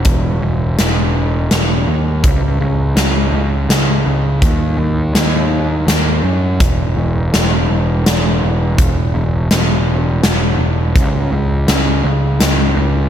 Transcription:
0.05 E1, kick, closed hi-hat
0.42 E1
0.79 E1, snare, closed hi-hat
1.51 E1, snare, closed hi-hat
1.88 D#2
2.24 C#2, kick, closed hi-hat
2.60 C#2
2.96 C#2, snare, closed hi-hat
3.32 C#2
3.69 C#2, snare, closed hi-hat
4.06 C#2
4.42 D#2, kick, closed hi-hat
4.78 D#2
5.15 D#2, snare, closed hi-hat
5.87 D#2, snare, closed hi-hat
6.24 F#2
6.60 E1, kick, closed hi-hat
6.97 E1
7.34 E1, snare, closed hi-hat
7.70 E1
8.06 E1, snare, closed hi-hat
8.43 E1
8.78 E1, kick, closed hi-hat
9.15 E1
9.51 E1, snare, closed hi-hat
10.24 E1, snare, closed hi-hat
10.59 E1
10.95 C#2, kick, closed hi-hat
11.32 C#2
11.68 C#2, snare, closed hi-hat
12.05 C#2
12.41 C#2, snare, closed hi-hat
12.77 C#2

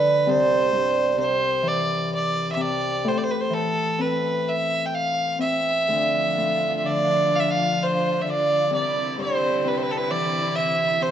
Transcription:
Already playing: D2 D3 B4
0.27 C2 C5
0.72 G2
1.17 C3 C5
1.62 E3
1.68 D5
2.15 D5
2.52 E5
2.56 C3
2.61 D5
3.04 A2 C5
3.18 D5
3.23 C5
3.31 B4
3.40 C5
3.50 E3 A4
3.99 C4 B4
4.49 E5
4.86 G5
4.94 F5
5.39 C4 E5
5.88 D2 F3 D4 F4
6.37 A2
6.77 E5
6.84 D3 D5
7.31 F3
7.35 F5
7.39 E5
7.50 F5
7.83 C5
8.21 D3 E5
8.30 D5
8.70 C2 D3 C4 E4
8.74 D5
9.17 G2
9.22 C5
9.64 C3 B4
9.77 C5
9.82 B4
9.91 A4
9.97 B4
10.11 E3 D5
10.56 E5
11.01 C3 C5

